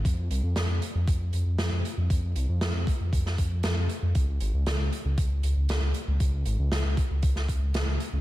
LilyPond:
<<
  \new Staff \with { instrumentName = "Detuned saw bass" } { \clef bass \time 4/4 \key f \minor \tempo 4 = 117 f,16 f,16 c,16 f,16 f,16 f,16 r16 f,16 f,16 f,16 f,16 f,16 f,16 f,16 r16 f,16 | f,16 f,16 c,16 f,16 f,16 f,16 r16 f,16 f,16 f,16 f,16 f,16 f,16 f,16 r16 f,16 | des,16 des,16 aes,,16 des,16 des,16 des,16 r16 des,16 des,16 des,16 des,16 des,16 des,16 des,16 r16 des,16 | des,16 des,16 aes,,16 des,16 des,16 des,16 r16 des,16 des,16 des,16 des,16 des,16 r16 des,16 r16 des,16 | }
  \new DrumStaff \with { instrumentName = "Drums" } \drummode { \time 4/4 <hh bd>8 hh8 <hh sn>8 hh8 <hh bd>8 hh8 <hh sn>8 hh8 | <hh bd>8 hh8 <hh sn>8 <hh bd>8 <hh bd>16 sn16 <hh bd>8 <hh sn>8 hh8 | <hh bd>8 hh8 <hh sn>8 hh8 <hh bd>8 hh8 <hh sn>8 hh8 | <hh bd>8 hh8 <hh sn>8 <hh bd>8 <hh bd>16 sn16 <hh bd>8 <hh sn>8 hh8 | }
>>